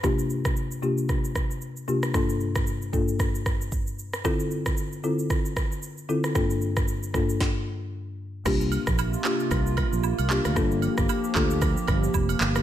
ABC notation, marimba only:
X:1
M:4/4
L:1/8
Q:"Swing 16ths" 1/4=114
K:Gdor
V:1 name="Marimba"
[C,B,DFG]2 z [C,B,DFG] z3 [C,B,DFG] | [G,,B,DFA]2 z [G,,B,DFA] z4 | [D,CEFA]2 z [D,CEFA] z3 [D,CEFA] | [G,,B,DFA]2 z [G,,B,DFA] z4 |
[B,DFG]2 z [B,DFG] z3 [B,DFG] | [B,DFA]2 z [B,DFA] z4 |]